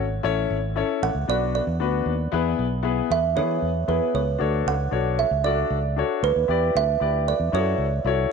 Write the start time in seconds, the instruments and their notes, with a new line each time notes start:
Already playing: fingered electric bass G#1
0.23 fingered electric bass A1, grand piano C#4 E4 A4 C#5
0.50 fingered electric bass G#1
0.76 grand piano C#4 E4 A4 C#5
1.03 fingered electric bass A1, kalimba F#5
1.15 fingered electric bass C#2
1.28 fingered electric bass B1, grand piano B3 D4 F#4 B4, kalimba D5
1.55 kalimba D5
1.67 fingered electric bass E2
1.80 fingered electric bass D2, grand piano B3 D4 F#4 B4
2.06 fingered electric bass D#2
2.32 fingered electric bass E2, grand piano B3 E4 G#4 B4
2.59 fingered electric bass B1
2.83 grand piano B3 E4 G#4 B4
3.10 fingered electric bass E2, kalimba E5
3.35 fingered electric bass E3, grand piano B3 E4 G#4 B4, kalimba C#5
3.62 fingered electric bass E2
3.88 fingered electric bass E2, grand piano B3 E4 G#4 B4, kalimba B4
4.14 fingered electric bass C#2, kalimba C#5
4.38 fingered electric bass D2, grand piano D4 F#4 A4 C#5
4.66 fingered electric bass C#2, kalimba F#5
4.91 fingered electric bass B1, grand piano D4 F#4 A4 C#5
5.19 kalimba E5
5.31 fingered electric bass C#2
5.44 grand piano D4 F#4 A4 D5, kalimba D5
5.70 fingered electric bass C#2
5.96 grand piano D4 F#4 A4 C#5
6.23 fingered electric bass D2, kalimba B4
6.36 fingered electric bass D#2
6.48 fingered electric bass E2, grand piano E4 G4 B4 D5
6.75 fingered electric bass D2, kalimba E5
7.00 fingered electric bass D2, grand piano E4 G4 B4 D5
7.28 kalimba D5
7.40 fingered electric bass E2
7.52 fingered electric bass F#2, grand piano E4 F#4 A4 C#5, kalimba C#5
7.78 fingered electric bass C#2
8.05 fingered electric bass C2, grand piano E4 F#4 A4 C#5